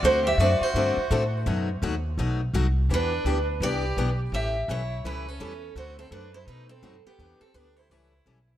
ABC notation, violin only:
X:1
M:4/4
L:1/8
Q:"Swing" 1/4=168
K:Dmix
V:1 name="Violin"
F G F F4 z | z8 | D3 z G3 z | G2 E2 E ^C3 |
F C D E ^D C2 B,- | B, C D E E3 z |]